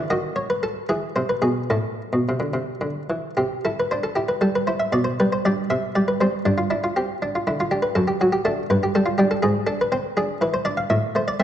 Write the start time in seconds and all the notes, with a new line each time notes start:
Already playing: E3
0.10 D#3 F#4 D#5
0.36 C#5
0.50 B4
0.63 A4
0.89 E3 G#4
1.16 C3 C5
1.29 B4
1.42 B2 G#4
1.70 A2 E4 A4
2.13 B2
2.29 C3
2.40 D3
2.54 C3
2.81 D3
3.10 E3
3.37 C3 G4
3.65 E4 A4
3.80 B4
3.91 D4 C5
4.03 A4
4.16 E4 G4
4.29 B4
4.41 G3 A4
4.55 B4
4.67 E4 C5
4.80 E5
4.92 B2 D5
5.04 C5
5.20 G3 B4
5.33 C5
5.45 G3 D4 D5
5.70 C3 E5
5.95 G3 D5
6.08 B4
6.21 G3 C4 C5
6.45 G2 D4
6.58 F4
6.70 D4 E4
6.84 F4
6.96 C4 G4
7.22 D4
7.35 F4
7.47 D3 E4
7.60 F4
7.71 D4 G4
7.82 B4
7.95 F#2 A4
8.08 G4
8.21 F#3 F#4
8.32 G4
8.45 A3 D4 A4
8.70 G2 B4
8.83 G4
8.95 G3 A4
9.06 F4
9.18 G3 D4 G4
9.31 A4
9.43 G#2 G#4
9.67 D4 A4
9.81 B4
9.92 C4 C5
10.17 D4 G#4
10.41 E3 B4
10.54 C5
10.65 D4 D5
10.77 F5
10.90 A2 E5
11.15 A3 C5
11.28 D5
11.40 A3 C4 E5